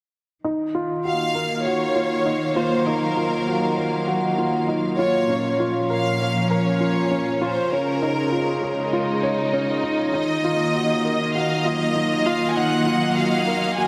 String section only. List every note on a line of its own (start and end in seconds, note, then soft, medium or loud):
0.44 5.29 D#3 medium
1.12 6.26 A#3 medium
1.42 6.26 F5 soft
2.62 5.29 F#3 medium
5.29 7.71 A#2 medium
5.52 7.72 F3 medium
6.09 8.68 C#4 medium
7.71 10.14 C#3 medium
7.86 10.14 G#3 medium
8.81 11.12 D#4 medium
8.81 13.88 D#5 medium
10.14 13.88 D#3 medium
10.40 13.88 A#3 medium
11.45 13.88 F#3 medium